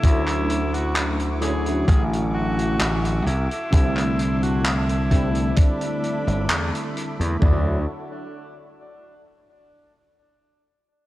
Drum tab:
HH |xxxxxxxxxx-xxxxx|xxxxxxxxxxxxxxxx|----------------|
CP |-x--x-------x---|-x--x-------x---|----------------|
FT |----------------|----------------|o---------------|
BD |o-------o-------|o-----o-o-------|o---------------|